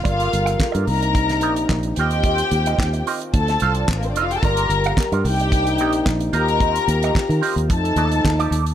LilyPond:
<<
  \new Staff \with { instrumentName = "String section" } { \time 4/4 \key c \dorian \tempo 4 = 110 <f' f''>4 r8 <bes' bes''>4. r8 <g' g''>8~ | <g' g''>4. r8 <a' a''>4 r32 <bes bes'>32 <c' c''>32 <d' d''>32 <ees' ees''>32 <f' f''>32 <g' g''>32 <a' a''>32 | <bes' bes''>4 r8 <g' g''>4. r8 <bes' bes''>8~ | <bes' bes''>4. r8 <a' a''>4. r8 | }
  \new Staff \with { instrumentName = "Clean electric guitar" } { \time 4/4 \key c \dorian <bes f' a' d''>8 r16 <bes f' a' f''>16 r16 <bes f' a' d''>16 r4 <bes ees' g' d''>16 r8. <c' f' g' ees''>16 <c' f' g' ees''>16 | <c' f' g' ees''>16 r8 <c' f' g' ees''>16 r8 <c' f' g' ees''>16 r8. <c' f' a' f''>16 <c' f' a' d''>16 r8 <c' f' a' d''>16 r16 | <bes f' a' d''>8 r16 <bes f' a' f''>16 r16 <bes f' a' d''>16 r4 <bes ees' g' d''>16 r8. <c' f' g' ees''>16 <c' f' g' ees''>16 | <c' f' g' ees''>16 r8 <c' f' g' ees''>16 r8 <c' f' g' ees''>16 r8. <ees' g' a' ees''>16 r8 <ees' g' a' d''>16 <ees' g' a' d''>16 r16 | }
  \new Staff \with { instrumentName = "French horn section" } { \time 4/4 \key c \dorian <g f' a' bes'>4. <c bes d' ees'>2 <ees c' f' g'>8~ | <ees c' f' g'>2 <d c'>2 | <g g' bes'>4. <c bes d' ees'>2 <ees c' f' g'>8~ | <ees c' f' g'>2 <f a ees'>2 | }
  \new Staff \with { instrumentName = "Fingered electric bass" } { \clef bass \time 4/4 \key c \dorian g,,8 g,,8 r16 g,16 c,4 bes,,8 bes,,8 ees,8~ | ees,8 ees,8 ees,8 r8 d,8 c,8 a,,8 f,,8 | g,,8 g,,8 r16 g,16 c,4 bes,,8 bes,,8 ees,8~ | ees,8 ees,8 r16 ees16 r16 ees,16 f,8 ees,8 ees,8 ees,8 | }
  \new DrumStaff \with { instrumentName = "Drums" } \drummode { \time 4/4 <hh bd>16 hh16 hh16 hh16 <hc bd sn>16 hh16 hho16 hh16 <hh bd>16 <hh sn>16 hh16 hh16 <hc bd sn>16 hh16 hh16 hh16 | <hh bd>16 hh16 hh16 hh16 <hc bd sn>16 hh16 hho16 hh16 <hh bd>16 <hh sn>16 hh16 hh16 <hc bd sn>16 hh16 hh16 hh16 | <hh bd>16 hh16 hh16 hh16 <hc bd sn>16 hh16 hho16 hh16 <hh bd>16 hh16 hh16 hh16 <hc bd sn>16 hh16 hh16 hh16 | <hh bd>16 hh16 hh16 hh16 <hc bd sn>16 hh16 hho16 hh16 <hh bd>16 hh16 hh16 hh16 <hc bd sn>16 hh16 hh16 hh16 | }
>>